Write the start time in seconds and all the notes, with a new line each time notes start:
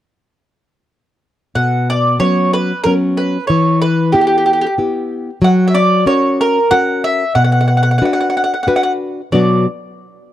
1.55 B2 F#5
1.90 D5
2.19 F#3 B3 C#4 C#5
2.53 B4
2.84 F#3 B3 C#4 A#4
3.17 B4
3.47 E3 C#5
3.82 B4
4.12 B3 E4 G4
4.21 G4
4.27 G4
4.38 G4
4.46 G4
4.53 G4
4.61 G4
4.67 G4
4.78 B3 E4 G4
5.42 F#3 F#5
5.67 E5
5.75 D5
6.06 C#4 F#4 A#4 C#5
6.41 A#4
6.71 C#4 F#4 A#4 F#5
7.04 E5
7.35 B2 F#5
7.44 F#5
7.52 F#5
7.61 F#5
7.68 F#5
7.77 F#5
7.83 F#5
7.91 F#5
7.98 D4 F#4 F#5
8.02 B4 F#5
8.13 F#5
8.20 F#5
8.30 F#5
8.37 F#5
8.44 F#5
8.54 F#5
8.63 F#5
8.67 D4 F#4 B4 F#5
8.76 F#5
8.83 F#5
9.32 B2 F#3 B3 D4 F#4 D5